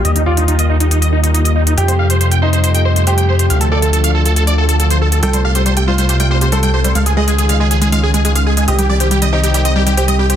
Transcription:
<<
  \new Staff \with { instrumentName = "Supersaw synth" } { \time 4/4 \key f \mixolydian \tempo 4 = 139 ees''16 ees'16 d''16 ees'16 ees'16 ees''16 ees'16 ees'16 ees'16 ees''16 ees'16 ees'16 ees'16 ees''16 ees'16 ees'16 | g''16 c''16 f''16 c''16 c''16 g''16 c''16 c''16 c''16 g''16 c''16 c''16 c''16 g''16 c''16 c''16 | f''16 a'16 d''16 a'16 a'16 f''16 a'16 a'16 a'16 d''16 a'16 a'16 a'16 c''16 a'16 a'16 | g''16 c''16 f''16 c''16 c''16 g''16 c''16 c''16 c''16 g''16 c''16 c''16 c''16 g''16 c''16 c''16 |
f''16 aes'16 ees''16 aes'16 aes'16 f''16 aes'16 aes'16 aes'16 f''16 aes'16 aes'16 aes'16 f''16 aes'16 aes'16 | ees''16 g'16 d''16 g'16 g'16 ees''16 g'16 g'16 g'16 ees''16 g'16 g'16 g'16 ees''16 g'16 g'16 | }
  \new Staff \with { instrumentName = "Grand piano" } { \time 4/4 \key f \mixolydian g'8 f'4 r2 r8 | g'4. ees'4. g'4~ | g'8 a'4 r2 r8 | a'4. f'4. a'4~ |
a'8 aes'4 r2 r8 | g'4. ees'4. g'4 | }
  \new Staff \with { instrumentName = "Analog synth pad" } { \clef bass \time 4/4 \key f \mixolydian <ees g bes f'>8 <ees g bes f'>8 <ees g bes f'>8 <ees g bes f'>16 <ees g bes f'>16 <ees g bes f'>8 <ees g bes f'>8 <ees g bes f'>8 r16 <ees g bes f'>16 | <c g a f'>8 <c g a f'>8 <c g a f'>8 <c g a f'>16 <c g a f'>16 <c g a f'>8 <c g a f'>8 <c g a f'>8 r16 <c g a f'>16 | <d f a f'>8 <d f a f'>8 <d f a f'>8 <d f a f'>16 <d f a f'>16 <d f a f'>8 <d f a f'>8 <d f a f'>8 r16 <d f a f'>16 | <c g a f'>8 <c g a f'>8 <c g a f'>8 <c g a f'>16 <c g a f'>16 <c g a f'>8 <c g a f'>8 <c g a f'>8 r16 <c g a f'>16 |
<ees aes des' f'>8 <ees aes des' f'>8 <ees aes des' f'>8 <ees aes des' f'>16 <ees aes des' f'>16 <ees aes des' f'>8 <ees aes des' f'>8 <ees aes des' f'>8 r16 <ees aes des' f'>16 | <ees g c' g'>8 <ees g c' g'>8 <ees g c' g'>8 <ees g c' g'>16 <ees g c' g'>16 <ees g c' g'>8 <ees g c' g'>8 <ees g c' g'>8 r16 <ees g c' g'>16 | }
  \new Staff \with { instrumentName = "Synth arpeggio sound" } { \clef bass \time 4/4 \key f \mixolydian r1 | r1 | r1 | g16 g16 g'16 g16 g16 g'16 g16 g16 g'16 g16 g16 g'16 g16 g16 g'16 g16 |
aes16 aes'16 aes16 aes16 aes'16 aes16 aes16 aes'16 aes16 aes16 aes'16 aes16 aes16 aes'16 aes16 aes16 | c''16 g16 g16 c''16 g16 g16 c''16 g16 g16 c''16 g16 g16 c''16 g16 g16 c''16 | }
  \new Staff \with { instrumentName = "Analog synth bass" } { \clef bass \time 4/4 \key f \mixolydian ees,1 | f,1 | d,1 | c,1 |
des,1 | c,1 | }
  \new DrumStaff \with { instrumentName = "Drums" } \drummode { \time 4/4 hh16 hh8 hh16 hh16 hh8 hh16 hh16 hh8 hh16 hh16 hh8 hh16 | hh16 hh8 hh16 hh16 hh8 hh16 hh16 hh8 hh16 hh16 hh8 hh16 | hh16 hh8 hh16 hh16 hh8 hh16 hh16 hh8 hh16 hh16 hh8 hh16 | hh16 hh8 hh16 hh16 hh8 hh16 hh16 hh8 hh16 hh16 hh8 hh16 |
hh16 hh8 hh16 hh16 hh8 hh16 hh16 hh8 hh16 hh16 hh8 hh16 | hh16 hh8 hh16 hh16 hh8 hh16 hh16 hh8 hh16 hh16 hh8 hh16 | }
>>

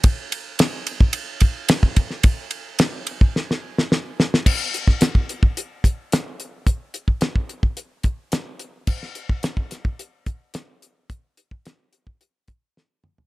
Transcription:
\new DrumStaff \with { instrumentName = "Drums" } \drummode { \time 4/4 \tempo 4 = 108 <bd cymr>8 cymr8 <cymr sn>8 cymr16 bd16 cymr8 <bd cymr>8 <cymr sn>16 bd16 <bd cymr>16 sn16 | <bd cymr>8 cymr8 <cymr sn>8 cymr16 bd16 sn16 sn8 sn16 sn8 sn16 sn16 | <cymc bd>8 hh16 <bd sn>16 <hh sn>16 bd16 hh16 bd16 hh8 <hh bd>8 <hh sn>8 hh8 | <hh bd>8 hh16 bd16 <hh sn>16 bd16 hh16 bd16 hh8 <hh bd>8 <hh sn>8 hh8 |
<cymc bd>16 sn16 hh16 bd16 <hh sn>16 bd16 <hh sn>16 bd16 hh8 <hh bd>8 <hh sn>8 hh8 | <hh bd>8 hh16 bd16 <hh sn>8 hh16 bd16 hh8 <hh bd>8 sn8 toml16 tomfh16 | }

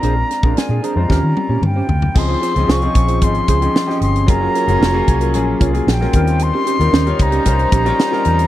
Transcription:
<<
  \new Staff \with { instrumentName = "Flute" } { \time 4/4 \key des \lydian \tempo 4 = 113 bes''4 aes''8 bes''4. g''4 | c'''4 des'''4 c'''4. c'''8 | bes''2~ bes''8 r8 g''4 | c'''4. bes''2~ bes''8 | }
  \new Staff \with { instrumentName = "Horn section" } { \time 4/4 \key des \lydian r1 | <c' f' aes' c''>2.~ <c' f' aes' c''>8 r8 | <des' ges' bes' des''>2. r8 <ees' bes' c'' ees''>8~ | <ees' bes' c'' ees''>1 | }
  \new Staff \with { instrumentName = "Clean electric guitar" } { \time 4/4 \key des \lydian <d' aes' c''>16 r8 <d' aes' d''>16 r16 <d' aes' d''>16 <d' aes' c''>16 r16 <des' g' c''>16 r8 <des' g' des''>16 r16 <des' g' c''>16 r8 | r16 <f' aes' c''>16 <f' aes' c''>16 r16 <f' aes' c''>16 r8 <f' aes' c''>16 r8 <f' aes' c''>16 r4 r16 | r16 <f' bes' des''>16 <f' bes' des''>16 r16 <f' bes' des''>16 r8 <f' bes' des''>16 r8 <f' bes' des''>16 r4 r16 | r16 <des' g' c''>16 <des' g' c''>16 r16 <des' g' c''>16 r8 <des' g' c''>16 r8 <des' g' c''>16 r4 r16 | }
  \new Staff \with { instrumentName = "Grand piano" } { \time 4/4 \key des \lydian <aes c' d' f' bes'>8 r16 <aes c' d' f' bes'>8. r16 <aes c' d' f' c''>16 <g c' des' f' bes'>4. r8 | <f c' des' ees' aes'>8 r16 <f c' des' ees' aes'>16 r16 <f c' des' ees' aes'>8 r16 <f c' des' ees' aes'>8 r16 <f c' des' ees' aes'>16 r16 <f c' des' ees' g'>8 r16 | <ges bes des' f' aes'>8 r16 <ges bes des' f' aes'>16 r16 <ges bes des' f' aes'>8 r16 <ges bes des' f' aes'>8 r16 <ges bes des' f' aes'>16 r16 <ges bes des' f' bes'>16 <g c' des' f' bes'>8~ | <g c' des' f' bes'>8 r16 <g c' des' f' bes'>16 r16 <g c' des' f' des''>8 r16 <g c' des' f' c''>8 r16 <g c' des' f' des''>16 r16 <g c' des' f' bes'>8 r16 | }
  \new Staff \with { instrumentName = "Fingered electric bass" } { \clef bass \time 4/4 \key des \lydian bes,,8 r16 bes,,16 r16 bes,16 r16 f,16 ees,16 ees16 r16 bes,16 g,8 d,8 | des,8 r16 des,16 c,8 bes,,8 aes,,8 des,8 r8 g,,8 | ges,,8 r16 ges,,16 f,,8 c,8 bes,,8 c,8 bes,,8 ees,8~ | ees,8 r16 ees,16 ees,8 des,8 c,8 bes,,8 r8 fes,8 | }
  \new DrumStaff \with { instrumentName = "Drums" } \drummode { \time 4/4 hh8 <hh sn>16 bd16 <hh sn>8 hh8 <bd sn>8 tommh8 toml8 tomfh16 tomfh16 | <cymc bd>8 <hh sn>16 hh16 sn16 hh16 <hh bd>16 hh16 <hh bd>16 hh16 <hh bd>16 hh16 sn16 sn16 hh16 hh16 | <hh bd>8 <hh sn>16 hh16 sn8 <hh bd>16 hh16 hh8 <hh bd>16 hh16 sn16 sn16 <hh bd>16 hh16 | hh8 hh16 hh16 sn16 hh16 <hh bd>16 hh16 <hh bd>16 hh16 <hh bd>16 hh16 sn16 sn16 hh16 hh16 | }
>>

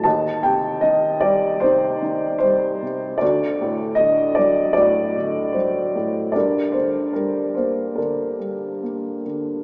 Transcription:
<<
  \new Staff \with { instrumentName = "Upright piano" } { \time 4/4 \key g \minor \tempo 4 = 76 << { a''8 g''8 ees''8 d''8 c''4 c''4 | d''4 ees''8 d''8 d''4 c''4 | d''8 c''8 bes'8 c''8 bes'4. r8 | } \\ { ees''2 ees'2 | fis'2 fis'2 | bes'2 d'2 | } >> }
  \new Staff \with { instrumentName = "Upright piano" } { \clef bass \time 4/4 \key g \minor ees,8 c8 ees8 g8 c8 ees8 g8 c8 | d,8 a,8 d8 fis8 a,8 d8 fis8 a,8 | g,8 d8 g8 bes8 d8 g8 bes8 d8 | }
>>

